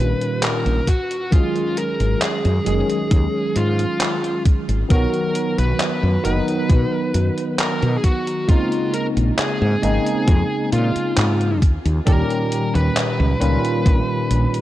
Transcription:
0.00 0.12 A#1 medium
0.00 0.85 A#2 medium
0.00 0.84 D#3 medium
0.00 0.84 G3 medium
0.00 0.85 C#4 medium
0.00 0.86 F4 medium
0.00 0.43 B4 loud
0.21 closed hi-hat soft
0.43 0.89 A#4 loud
0.43 clap loud
0.43 closed hi-hat medium
0.66 0.79 A#1 medium
0.66 closed hi-hat soft
0.87 1.33 F#4 medium
0.87 kick medium
0.87 closed hi-hat medium
1.11 closed hi-hat soft
1.31 2.61 D#3 medium
1.31 2.61 F#3 medium
1.31 2.61 G#3 medium
1.31 2.62 C#4 medium
1.31 1.79 F4 medium
1.31 2.62 G#4 medium
1.31 kick loud
1.31 closed hi-hat medium
1.56 closed hi-hat soft
1.77 2.22 A#4 medium
1.77 closed hi-hat medium
2.00 2.14 G#1 medium
2.00 closed hi-hat soft
2.22 2.66 G#4 medium
2.22 clap loud
2.22 closed hi-hat medium
2.45 2.58 F#2 medium
2.45 closed hi-hat soft
2.65 2.81 F#1 medium
2.65 4.84 D#3 medium
2.65 4.85 F#3 medium
2.65 4.85 G#3 medium
2.65 4.85 C#4 medium
2.65 3.59 G#4 medium
2.65 4.86 G#4 medium
2.65 closed hi-hat medium
2.90 closed hi-hat soft
3.11 3.26 D#2 loud
3.11 kick loud
3.11 closed hi-hat medium
3.56 3.85 G#2 medium
3.56 4.42 F4 medium
3.56 closed hi-hat medium
3.79 closed hi-hat soft
4.01 clap loud
4.01 closed hi-hat medium
4.24 closed hi-hat soft
4.46 kick loud
4.46 closed hi-hat medium
4.69 4.82 G#1 medium
4.69 closed hi-hat soft
4.89 5.05 B1 medium
4.89 6.19 D#3 medium
4.89 6.19 F#3 medium
4.89 6.20 B3 medium
4.89 6.20 F#4 loud
4.89 5.58 A#4 loud
4.89 kick loud
4.89 closed hi-hat medium
5.14 closed hi-hat soft
5.35 closed hi-hat medium
5.58 5.72 B1 medium
5.58 6.24 B4 loud
5.58 closed hi-hat soft
5.80 clap loud
5.80 closed hi-hat medium
6.03 6.17 F#2 medium
6.23 6.39 F#1 medium
6.23 8.43 D#3 medium
6.23 8.43 F#3 medium
6.23 8.44 B3 medium
6.23 8.44 D#4 medium
6.23 7.59 B4 loud
6.23 closed hi-hat medium
6.48 closed hi-hat soft
6.69 6.84 B2 medium
6.69 kick loud
6.69 closed hi-hat medium
7.14 7.29 F#2 medium
7.14 closed hi-hat medium
7.38 closed hi-hat soft
7.59 7.97 A#4 loud
7.59 clap loud
7.59 closed hi-hat medium
7.82 7.96 B2 medium
7.82 closed hi-hat soft
7.98 8.04 G#4 medium
8.04 8.48 F#4 medium
8.04 kick medium
8.04 closed hi-hat medium
8.27 closed hi-hat soft
8.47 9.77 C#3 medium
8.47 9.77 G#3 medium
8.47 9.78 A#3 medium
8.47 9.78 C4 medium
8.47 9.79 D#4 medium
8.47 8.95 F4 medium
8.47 kick loud
8.47 closed hi-hat medium
8.72 closed hi-hat soft
8.94 9.06 A#4 medium
8.94 closed hi-hat medium
9.17 9.30 A#1 medium
9.17 closed hi-hat soft
9.38 9.82 G#4 medium
9.38 clap loud
9.38 closed hi-hat medium
9.62 9.75 G#2 loud
9.82 9.98 G#1 medium
9.82 11.59 C#3 medium
9.82 11.59 G#3 medium
9.82 11.60 A#3 medium
9.82 11.60 C4 medium
9.82 11.60 D#4 medium
9.82 10.69 G#4 medium
9.82 closed hi-hat medium
10.06 closed hi-hat soft
10.28 10.42 F2 loud
10.28 kick loud
10.28 closed hi-hat medium
10.73 10.95 A#2 medium
10.73 11.58 F4 medium
10.73 closed hi-hat medium
10.96 muted fretless electric bass stroke soft
10.96 closed hi-hat soft
11.17 11.62 G#2 loud
11.17 clap loud
11.17 closed hi-hat medium
11.41 closed hi-hat soft
11.62 11.77 D#2 medium
11.62 kick medium
11.62 closed hi-hat medium
11.85 11.99 D#2 loud
11.85 closed hi-hat soft
12.05 12.21 D#2 medium
12.05 13.36 A#2 medium
12.05 13.35 D#3 medium
12.05 13.36 G3 medium
12.05 13.36 C#4 medium
12.05 13.37 G4 loud
12.05 12.74 A#4 loud
12.05 kick loud
12.05 closed hi-hat medium
12.30 closed hi-hat soft
12.52 closed hi-hat medium
12.75 12.88 D#2 medium
12.75 13.40 B4 loud
12.75 closed hi-hat soft
12.97 clap loud
12.97 closed hi-hat medium
13.20 13.33 C#2 loud
13.40 13.56 C#2 medium
13.40 14.61 A#2 medium
13.40 14.61 D#3 medium
13.40 14.61 G3 medium
13.40 14.61 C#4 medium
13.40 14.61 F4 medium
13.40 14.61 B4 loud
13.40 closed hi-hat medium
13.65 closed hi-hat soft
13.86 14.00 A#1 medium
13.86 kick loud
13.86 closed hi-hat medium
14.31 14.45 A#1 medium
14.31 closed hi-hat medium
14.54 closed hi-hat medium

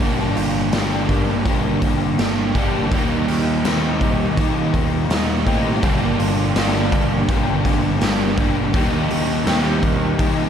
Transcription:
0.00 0.34 G1 medium
0.00 1.09 G2 medium
0.00 1.09 D3 loud
0.00 0.72 G3 medium
0.00 0.73 A#3 loud
0.00 0.73 D4 loud
0.00 0.74 G4 medium
0.00 kick loud
0.00 open hi-hat medium
0.36 0.70 G1 medium
0.36 2.18 F4 medium
0.36 open hi-hat medium
0.72 1.06 G1 medium
0.72 2.17 D3 medium
0.72 1.46 G3 medium
0.72 1.47 A#3 medium
0.72 1.46 D4 medium
0.72 1.47 G4 medium
0.72 snare loud
0.72 open hi-hat medium
1.08 1.43 G1 medium
1.08 1.45 A#3 medium
1.08 kick medium
1.08 open hi-hat medium
1.46 1.79 G1 medium
1.46 2.19 G2 medium
1.46 2.19 D3 medium
1.46 1.85 G3 medium
1.46 1.84 A#3 medium
1.46 1.83 D4 medium
1.46 1.83 G4 loud
1.46 kick loud
1.46 open hi-hat medium
1.82 2.16 G1 medium
1.82 2.58 G3 medium
1.82 2.58 A#3 medium
1.82 2.56 D4 medium
1.82 2.56 G4 medium
1.82 kick medium
1.82 open hi-hat medium
2.17 2.53 G1 medium
2.17 2.89 D3 medium
2.17 2.57 G3 medium
2.17 3.67 A#3 medium
2.17 2.56 A#3 medium
2.17 2.54 D4 medium
2.17 snare loud
2.17 open hi-hat medium
2.55 2.89 G1 medium
2.55 2.92 G3 medium
2.55 2.93 A#3 medium
2.55 2.91 D4 medium
2.55 2.93 G4 medium
2.55 kick medium
2.55 open hi-hat medium
2.91 3.25 D#2 medium
2.91 4.01 D#3 medium
2.91 3.64 G3 medium
2.91 3.65 A#3 medium
2.91 3.65 D#4 loud
2.91 3.66 G4 medium
2.91 kick loud
2.91 open hi-hat medium
3.27 3.62 D#2 medium
3.27 6.19 G4 medium
3.27 open hi-hat medium
3.64 3.98 D#2 medium
3.64 5.10 D#3 medium
3.64 4.38 G3 medium
3.64 4.39 A#3 medium
3.64 5.46 C4 medium
3.64 4.38 D#4 medium
3.64 4.40 G4 medium
3.64 snare loud
3.64 open hi-hat medium
4.01 4.35 D#2 medium
4.01 kick medium
4.01 open hi-hat medium
4.37 4.71 D#3 medium
4.37 5.11 D#3 medium
4.37 5.84 G3 medium
4.37 4.76 A#3 loud
4.37 4.74 D#4 medium
4.37 4.74 G4 loud
4.37 kick loud
4.37 open hi-hat medium
4.74 5.08 D#2 medium
4.74 5.49 A#3 medium
4.74 5.47 D#4 medium
4.74 5.46 G4 medium
4.74 kick medium
4.74 open hi-hat soft
5.09 5.43 D#2 medium
5.09 5.83 D#3 medium
5.09 5.81 D#3 medium
5.09 5.49 G3 medium
5.09 5.48 A#3 medium
5.09 5.45 D#4 medium
5.09 snare loud
5.09 open hi-hat medium
5.46 5.80 A2 medium
5.46 5.84 G3 medium
5.46 5.84 A#3 medium
5.46 5.83 C4 medium
5.46 5.81 D#4 medium
5.46 5.85 G4 medium
5.46 kick medium
5.46 open hi-hat medium
5.83 6.17 G1 medium
5.83 6.92 G2 medium
5.83 6.92 D3 medium
5.83 6.56 G3 medium
5.83 6.57 A#3 loud
5.83 6.56 D4 loud
5.83 6.58 G4 loud
5.83 kick loud
5.83 open hi-hat medium
6.19 6.53 G1 medium
6.19 8.01 F4 medium
6.19 open hi-hat medium
6.55 6.89 G1 medium
6.55 8.01 D3 medium
6.55 7.30 G3 medium
6.55 7.30 A#3 medium
6.55 7.30 D4 medium
6.55 7.31 G4 medium
6.55 snare loud
6.55 open hi-hat medium
6.92 7.26 G1 medium
6.92 7.29 A#3 medium
6.92 kick medium
6.92 open hi-hat medium
7.29 7.62 G1 medium
7.29 8.02 G2 medium
7.29 8.02 D3 medium
7.29 7.67 G3 medium
7.29 7.66 A#3 loud
7.29 7.65 D4 medium
7.29 7.65 G4 loud
7.29 kick loud
7.29 open hi-hat medium
7.65 7.99 G1 medium
7.65 8.39 G3 medium
7.65 8.39 A#3 medium
7.65 8.37 D4 medium
7.65 8.37 G4 medium
7.65 kick medium
7.65 open hi-hat medium
8.01 8.35 G1 medium
8.01 8.72 D3 medium
8.01 8.40 G3 medium
8.01 9.50 A#3 medium
8.01 8.39 A#3 medium
8.01 8.37 D4 medium
8.01 snare loud
8.01 open hi-hat medium
8.37 8.71 G1 medium
8.37 8.74 G3 medium
8.37 8.74 A#3 medium
8.37 8.72 D4 medium
8.37 8.75 G4 medium
8.37 kick medium
8.37 open hi-hat medium
8.74 9.08 D#2 medium
8.74 9.83 D#3 medium
8.74 9.45 G3 loud
8.74 9.45 A#3 loud
8.74 9.46 D#4 medium
8.74 9.47 G4 loud
8.74 kick loud
8.74 open hi-hat medium
9.10 9.44 D#2 medium
9.10 10.49 G4 medium
9.10 open hi-hat medium
9.46 9.80 D#2 medium
9.46 10.49 D#3 medium
9.46 10.18 G3 medium
9.46 10.19 A#3 medium
9.46 10.49 C4 medium
9.46 10.19 D#4 medium
9.46 10.20 G4 medium
9.46 snare loud
9.46 open hi-hat medium
9.83 10.17 D#2 medium
9.83 10.49 A#3 medium
9.83 kick medium
9.83 open hi-hat medium
10.19 10.49 D#3 medium
10.19 10.49 G3 medium
10.19 10.49 A#3 medium
10.19 10.49 D#4 medium
10.19 10.49 G4 medium
10.19 kick loud
10.19 open hi-hat medium

